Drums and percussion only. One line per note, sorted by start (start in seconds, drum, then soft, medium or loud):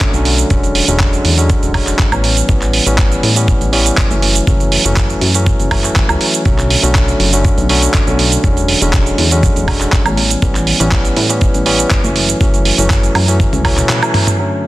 0.00 kick loud
0.00 clap loud
0.00 closed hi-hat soft
0.00 shaker medium
0.14 closed hi-hat soft
0.14 shaker soft
0.25 open hi-hat loud
0.38 closed hi-hat medium
0.38 shaker medium
0.50 kick loud
0.50 closed hi-hat soft
0.50 shaker medium
0.63 closed hi-hat soft
0.63 shaker soft
0.75 open hi-hat loud
0.88 closed hi-hat medium
0.88 shaker medium
1.00 kick loud
1.00 clap loud
1.00 closed hi-hat medium
1.00 shaker medium
1.13 closed hi-hat soft
1.13 shaker soft
1.25 open hi-hat loud
1.38 closed hi-hat medium
1.38 shaker medium
1.50 kick loud
1.50 closed hi-hat medium
1.50 shaker medium
1.63 closed hi-hat soft
1.63 shaker soft
1.74 kick medium
1.74 open hi-hat loud
1.74 high woodblock medium
1.87 clap soft
1.87 closed hi-hat medium
1.87 shaker medium
1.99 kick loud
1.99 clap loud
1.99 closed hi-hat soft
1.99 shaker soft
2.12 closed hi-hat soft
2.12 high woodblock medium
2.12 shaker soft
2.24 open hi-hat loud
2.37 closed hi-hat medium
2.37 shaker medium
2.49 kick loud
2.49 closed hi-hat soft
2.49 shaker soft
2.62 clap soft
2.62 closed hi-hat soft
2.62 shaker soft
2.73 open hi-hat loud
2.86 closed hi-hat medium
2.86 shaker medium
2.98 kick loud
2.98 clap loud
2.98 closed hi-hat soft
2.98 shaker medium
3.12 closed hi-hat soft
3.12 shaker soft
3.23 open hi-hat loud
3.36 closed hi-hat soft
3.36 shaker medium
3.48 kick loud
3.48 closed hi-hat soft
3.48 shaker medium
3.61 closed hi-hat soft
3.61 shaker soft
3.73 open hi-hat loud
3.86 closed hi-hat soft
3.86 shaker medium
3.97 kick loud
3.97 clap loud
3.97 closed hi-hat soft
3.97 shaker soft
4.11 closed hi-hat soft
4.11 shaker soft
4.22 open hi-hat loud
4.36 closed hi-hat soft
4.36 shaker medium
4.47 kick loud
4.47 closed hi-hat soft
4.47 shaker medium
4.60 closed hi-hat soft
4.60 shaker soft
4.72 open hi-hat loud
4.85 closed hi-hat soft
4.85 shaker medium
4.96 kick loud
4.96 clap loud
4.96 closed hi-hat soft
4.96 shaker medium
5.10 closed hi-hat soft
5.10 shaker soft
5.21 open hi-hat loud
5.35 shaker medium
5.46 kick loud
5.46 closed hi-hat soft
5.46 shaker medium
5.60 closed hi-hat soft
5.60 shaker soft
5.71 kick medium
5.71 open hi-hat loud
5.71 high woodblock medium
5.84 clap soft
5.84 closed hi-hat soft
5.84 shaker medium
5.96 kick loud
5.96 clap loud
5.96 closed hi-hat soft
5.96 shaker soft
6.09 closed hi-hat soft
6.09 high woodblock medium
6.09 shaker soft
6.21 open hi-hat loud
6.34 closed hi-hat soft
6.34 shaker medium
6.45 kick loud
6.45 closed hi-hat soft
6.45 shaker medium
6.58 clap soft
6.58 closed hi-hat soft
6.58 shaker soft
6.70 open hi-hat loud
6.83 closed hi-hat soft
6.83 shaker medium
6.95 kick loud
6.95 clap loud
6.95 closed hi-hat soft
6.95 shaker medium
7.08 closed hi-hat soft
7.08 shaker soft
7.20 open hi-hat loud
7.33 closed hi-hat soft
7.33 shaker medium
7.45 kick loud
7.45 closed hi-hat soft
7.45 shaker medium
7.58 closed hi-hat soft
7.58 shaker soft
7.69 open hi-hat loud
7.82 closed hi-hat soft
7.82 shaker medium
7.94 kick loud
7.94 clap loud
7.94 shaker medium
8.07 closed hi-hat soft
8.07 shaker soft
8.19 open hi-hat loud
8.32 closed hi-hat soft
8.32 shaker medium
8.44 kick loud
8.44 closed hi-hat medium
8.44 shaker medium
8.57 closed hi-hat soft
8.57 shaker soft
8.68 open hi-hat loud
8.82 closed hi-hat soft
8.82 shaker medium
8.93 kick loud
8.93 clap loud
8.93 closed hi-hat medium
8.93 shaker medium
9.06 closed hi-hat soft
9.06 shaker soft
9.18 open hi-hat loud
9.31 shaker medium
9.43 kick loud
9.43 closed hi-hat medium
9.43 shaker medium
9.56 closed hi-hat soft
9.56 shaker soft
9.68 kick medium
9.68 open hi-hat loud
9.68 high woodblock medium
9.81 clap soft
9.81 closed hi-hat soft
9.81 shaker medium
9.92 kick loud
9.92 clap loud
9.92 closed hi-hat soft
9.92 shaker medium
10.06 closed hi-hat soft
10.06 high woodblock medium
10.06 shaker soft
10.17 open hi-hat loud
10.30 closed hi-hat soft
10.30 shaker medium
10.42 kick loud
10.42 closed hi-hat medium
10.42 shaker medium
10.55 clap soft
10.55 closed hi-hat soft
10.55 shaker soft
10.67 open hi-hat loud
10.80 closed hi-hat medium
10.80 shaker medium
10.91 kick loud
10.91 clap loud
10.91 closed hi-hat medium
10.91 shaker medium
11.05 closed hi-hat soft
11.05 shaker soft
11.16 open hi-hat loud
11.30 closed hi-hat medium
11.30 shaker medium
11.41 kick loud
11.41 closed hi-hat medium
11.41 shaker medium
11.54 closed hi-hat soft
11.54 shaker soft
11.66 open hi-hat loud
11.79 closed hi-hat medium
11.79 shaker medium
11.90 kick loud
11.90 clap loud
11.90 closed hi-hat medium
11.90 shaker medium
12.04 closed hi-hat soft
12.04 shaker soft
12.16 open hi-hat loud
12.29 closed hi-hat medium
12.29 shaker medium
12.41 kick loud
12.41 closed hi-hat medium
12.41 shaker medium
12.54 closed hi-hat soft
12.54 shaker soft
12.65 open hi-hat loud
12.78 closed hi-hat medium
12.78 shaker medium
12.90 kick loud
12.90 clap loud
12.90 closed hi-hat medium
12.90 shaker medium
13.03 closed hi-hat soft
13.03 shaker soft
13.15 open hi-hat loud
13.15 high woodblock medium
13.28 closed hi-hat medium
13.28 shaker medium
13.40 kick loud
13.40 closed hi-hat medium
13.40 high tom medium
13.40 shaker medium
13.53 closed hi-hat soft
13.53 high tom medium
13.53 shaker soft
13.65 kick medium
13.65 open hi-hat loud
13.65 high woodblock medium
13.77 clap soft
13.77 closed hi-hat medium
13.77 mid tom medium
13.77 shaker medium
13.89 clap loud
13.89 closed hi-hat medium
13.89 mid tom medium
13.89 shaker medium
14.03 closed hi-hat soft
14.03 high woodblock medium
14.03 shaker soft
14.14 mid tom loud
14.14 open hi-hat loud
14.27 closed hi-hat medium
14.27 mid tom medium
14.27 shaker medium